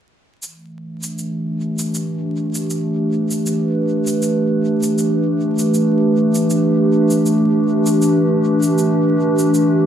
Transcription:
0.42 9.86 E3 medium
0.42 shaker soft
0.55 9.86 A3 medium
0.83 9.86 D4 medium
1.03 shaker soft
1.10 9.86 G4 medium
1.18 shaker soft
1.79 shaker soft
1.94 shaker soft
2.55 9.86 B4 medium
2.55 shaker soft
2.70 shaker soft
3.31 shaker soft
3.46 shaker soft
4.07 shaker soft
4.22 shaker soft
4.83 shaker soft
4.98 shaker soft
5.59 shaker soft
5.74 shaker soft
6.35 shaker soft
6.50 shaker soft
7.10 shaker soft
7.26 shaker soft
7.86 shaker soft
8.02 shaker soft
8.63 shaker soft
8.78 shaker soft
9.39 shaker soft
9.54 shaker soft

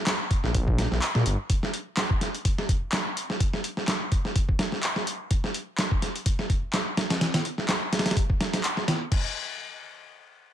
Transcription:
0.07 snare loud
0.07 clap loud
0.07 closed hi-hat medium
0.31 kick medium
0.31 closed hi-hat medium
0.44 0.87 A#1 loud
0.44 snare soft
0.55 kick loud
0.55 closed hi-hat medium
0.68 kick medium
0.78 snare loud
0.78 closed hi-hat medium
0.91 1.00 A#1 medium
0.91 snare soft
1.02 clap loud
1.02 closed hi-hat medium
1.15 1.24 A#2 loud
1.15 snare soft
1.26 1.36 G1 loud
1.26 closed hi-hat medium
1.50 kick loud
1.50 closed hi-hat medium
1.63 snare soft
1.74 closed hi-hat medium
1.97 snare loud
1.97 clap medium
1.97 closed hi-hat medium
2.10 kick medium
2.21 snare soft
2.21 closed hi-hat medium
2.35 closed hi-hat soft
2.45 kick loud
2.45 closed hi-hat medium
2.58 snare soft
2.69 kick medium
2.69 closed hi-hat medium
2.92 snare loud
2.92 clap loud
2.92 closed hi-hat medium
3.17 closed hi-hat medium
3.30 snare soft
3.40 kick loud
3.40 closed hi-hat medium
3.53 snare soft
3.64 closed hi-hat medium
3.77 snare soft
3.88 snare loud
3.88 clap medium
3.88 closed hi-hat medium
4.12 kick medium
4.12 closed hi-hat medium
4.25 snare soft
4.36 kick loud
4.36 closed hi-hat medium
4.49 kick medium
4.59 snare loud
4.59 closed hi-hat medium
4.72 snare soft
4.83 clap medium
4.83 closed hi-hat medium
4.96 snare soft
5.07 closed hi-hat medium
5.31 kick loud
5.31 closed hi-hat medium
5.44 snare soft
5.54 closed hi-hat medium
5.78 snare loud
5.78 clap loud
5.78 closed hi-hat medium
5.91 kick medium
6.02 snare soft
6.02 closed hi-hat medium
6.16 closed hi-hat soft
6.26 kick loud
6.26 closed hi-hat medium
6.39 snare soft
6.50 kick medium
6.50 closed hi-hat medium
6.73 snare loud
6.73 clap medium
6.73 closed hi-hat medium
6.97 snare loud
6.97 closed hi-hat medium
7.10 snare medium
7.10 closed hi-hat medium
7.21 snare medium
7.21 closed hi-hat medium
7.34 snare medium
7.34 closed hi-hat medium
7.45 closed hi-hat medium
7.58 snare soft
7.69 snare loud
7.69 clap medium
7.69 closed hi-hat medium
7.93 snare medium
7.93 closed hi-hat medium
7.99 snare medium
7.99 closed hi-hat medium
8.06 snare medium
8.06 closed hi-hat medium
8.11 snare medium
8.11 closed hi-hat medium
8.17 kick loud
8.17 closed hi-hat medium
8.30 kick medium
8.41 snare loud
8.41 closed hi-hat medium
8.54 snare medium
8.54 closed hi-hat medium
8.64 clap medium
8.64 closed hi-hat medium
8.77 snare soft
8.88 snare medium
8.88 closed hi-hat medium
9.12 kick loud
9.12 crash medium

